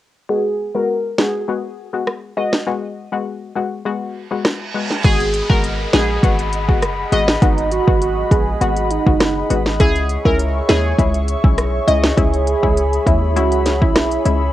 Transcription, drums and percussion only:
1.18 snare loud
2.07 cross-stick loud
2.53 snare loud
4.45 cross-stick loud
4.45 snare loud
4.91 snare medium
5.04 kick loud
5.04 closed hi-hat medium
5.04 crash loud
5.20 closed hi-hat medium
5.34 closed hi-hat medium
5.50 kick medium
5.64 closed hi-hat medium
5.93 snare loud
5.93 closed hi-hat medium
6.23 kick medium
6.23 closed hi-hat medium
6.39 closed hi-hat medium
6.53 closed hi-hat medium
6.69 kick loud
6.82 cross-stick loud
6.82 closed hi-hat medium
7.12 closed hi-hat medium
7.28 snare loud
7.42 kick loud
7.42 closed hi-hat medium
7.58 closed hi-hat medium
7.71 closed hi-hat medium
7.88 kick loud
8.02 closed hi-hat medium
8.31 kick medium
8.31 closed hi-hat medium
8.61 closed hi-hat medium
8.76 closed hi-hat medium
8.90 closed hi-hat medium
9.06 kick loud
9.20 cross-stick loud
9.20 snare loud
9.20 closed hi-hat medium
9.50 closed hi-hat medium
9.66 snare medium
9.80 kick loud
9.80 closed hi-hat medium
9.95 closed hi-hat soft
10.09 closed hi-hat medium
10.25 kick medium
10.39 closed hi-hat medium
10.69 snare loud
10.69 closed hi-hat medium
10.99 kick medium
10.99 closed hi-hat medium
11.14 closed hi-hat medium
11.28 closed hi-hat medium
11.44 kick loud
11.58 cross-stick loud
11.58 closed hi-hat medium
11.88 closed hi-hat medium
12.04 snare loud
12.18 kick loud
12.18 closed hi-hat medium
12.34 closed hi-hat soft
12.47 closed hi-hat medium
12.63 kick loud
12.77 closed hi-hat medium
12.93 closed hi-hat soft
13.07 kick loud
13.07 closed hi-hat medium
13.36 closed hi-hat medium
13.52 closed hi-hat medium
13.66 snare medium
13.66 closed hi-hat medium
13.82 kick loud
13.95 cross-stick loud
13.95 snare loud
13.95 closed hi-hat medium
14.11 closed hi-hat medium
14.25 closed hi-hat medium

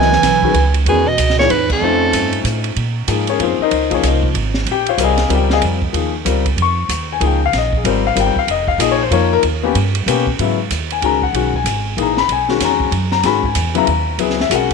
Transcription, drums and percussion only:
0.02 snare soft
0.12 snare soft
0.23 snare soft
0.23 hi-hat pedal medium
0.23 ride medium
0.43 kick medium
0.54 ride medium
0.74 ride soft
0.86 ride medium
1.18 hi-hat pedal medium
1.18 ride medium
1.30 snare soft
1.40 snare soft
1.50 ride medium
1.70 kick medium
1.70 crash medium
2.13 hi-hat pedal medium
2.13 ride medium
2.33 ride soft
2.45 hi-hat pedal medium
2.45 ride medium
2.64 ride soft
2.76 ride medium
3.08 hi-hat pedal medium
3.08 ride medium
3.27 ride soft
3.40 ride medium
3.71 ride medium
3.91 kick medium
3.91 ride soft
4.03 hi-hat pedal medium
4.03 ride medium
4.23 kick medium
4.35 ride medium
4.54 snare soft
4.66 ride medium
4.86 ride soft
4.98 hi-hat pedal medium
4.98 ride medium
5.18 snare soft
5.18 ride soft
5.30 ride medium
5.50 snare medium
5.62 ride medium
5.82 kick medium
5.94 ride medium
6.26 hi-hat pedal soft
6.26 ride medium
6.46 kick soft
6.46 ride soft
6.58 ride medium
6.89 hi-hat pedal medium
6.89 ride medium
7.21 ride medium
7.53 snare soft
7.53 ride medium
7.73 kick medium
7.85 ride medium
8.16 hi-hat pedal soft
8.16 ride medium
8.36 kick medium
8.48 ride medium
8.67 kick medium
8.80 hi-hat pedal medium
8.80 ride medium
9.12 ride medium
9.43 ride medium
9.75 ride medium
9.95 ride medium
10.08 hi-hat pedal medium
10.08 ride medium
10.27 kick medium
10.39 ride medium
10.71 hi-hat pedal medium
10.71 ride medium
10.90 ride soft
11.02 ride medium
11.22 kick soft
11.34 ride medium
11.54 kick medium
11.66 hi-hat pedal medium
11.66 ride medium
11.98 ride medium
12.17 snare soft
12.29 ride medium
12.49 snare soft
12.60 snare soft
12.60 hi-hat pedal medium
12.60 ride medium
12.80 kick medium
12.92 ride medium
13.12 snare soft
13.23 snare soft
13.23 ride medium
13.43 kick medium
13.55 hi-hat pedal medium
13.55 ride medium
13.75 ride soft
13.87 ride medium
14.19 ride medium
14.30 snare soft
14.40 snare soft
14.51 hi-hat pedal medium
14.51 ride medium
14.71 kick soft
14.71 ride soft

